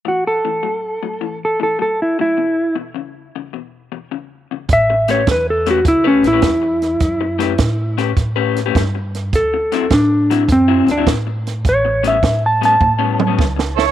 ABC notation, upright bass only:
X:1
M:4/4
L:1/8
Q:"Swing" 1/4=104
K:Amix
V:1 name="Upright bass" clef=bass
z8 | z8 | A,,,2 E,,2 C,, A,,, E,,2 | F,,2 A,,2 A,,2 G,,2 |
D,,2 A,,2 F,, D,, A,,2 | A,,,2 A,,2 A,,2 C,,2 |]